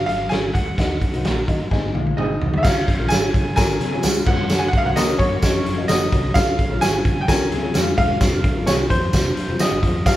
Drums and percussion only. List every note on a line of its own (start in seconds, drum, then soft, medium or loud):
0.09 snare soft
0.09 closed hi-hat medium
0.31 snare loud
0.31 closed hi-hat medium
0.55 kick medium
0.55 closed hi-hat medium
0.78 kick medium
0.78 snare loud
0.78 closed hi-hat medium
1.02 kick medium
1.02 closed hi-hat medium
1.14 closed hi-hat medium
1.25 snare loud
1.25 closed hi-hat medium
1.48 kick medium
1.48 closed hi-hat medium
1.71 kick medium
1.71 snare medium
1.95 high tom medium
2.07 high tom medium
2.18 mid tom medium
2.42 floor tom medium
2.54 floor tom medium
2.64 kick loud
2.64 snare loud
2.64 crash loud
2.64 tambourine medium
2.88 kick medium
2.88 closed hi-hat medium
3.10 snare loud
3.10 closed hi-hat medium
3.10 tambourine medium
3.34 kick medium
3.34 closed hi-hat medium
3.57 kick medium
3.57 snare loud
3.57 closed hi-hat loud
3.57 tambourine medium
3.81 snare soft
3.81 closed hi-hat medium
4.03 snare loud
4.03 closed hi-hat medium
4.03 tambourine medium
4.26 kick loud
4.26 crash medium
4.50 snare loud
4.50 closed hi-hat loud
4.50 tambourine medium
4.73 kick loud
4.73 closed hi-hat medium
4.96 snare loud
4.96 closed hi-hat medium
4.96 tambourine medium
5.19 kick medium
5.19 closed hi-hat medium
5.42 kick medium
5.42 snare loud
5.42 closed hi-hat loud
5.42 tambourine medium
5.66 snare soft
5.66 closed hi-hat medium
5.88 snare loud
5.88 closed hi-hat medium
5.88 tambourine medium
6.12 kick medium
6.12 closed hi-hat medium
6.35 kick loud
6.35 snare loud
6.35 closed hi-hat medium
6.35 tambourine medium
6.59 kick medium
6.59 closed hi-hat medium
6.82 snare loud
6.82 closed hi-hat medium
6.82 tambourine medium
7.05 kick medium
7.05 closed hi-hat medium
7.28 kick medium
7.28 snare loud
7.28 closed hi-hat loud
7.28 tambourine medium
7.52 snare soft
7.52 closed hi-hat medium
7.74 snare loud
7.74 closed hi-hat medium
7.74 tambourine medium
7.98 kick medium
7.98 closed hi-hat medium
8.21 kick loud
8.21 snare loud
8.21 closed hi-hat medium
8.21 tambourine medium
8.44 kick loud
8.44 closed hi-hat medium
8.67 snare loud
8.67 closed hi-hat medium
8.67 tambourine medium
8.90 kick medium
8.90 closed hi-hat medium
9.13 kick medium
9.13 snare loud
9.13 closed hi-hat medium
9.13 tambourine medium
9.37 snare soft
9.37 closed hi-hat medium
9.59 snare loud
9.59 closed hi-hat medium
9.59 tambourine medium
9.83 kick medium
9.83 closed hi-hat medium
10.06 kick loud
10.06 snare loud
10.06 closed hi-hat medium
10.06 tambourine medium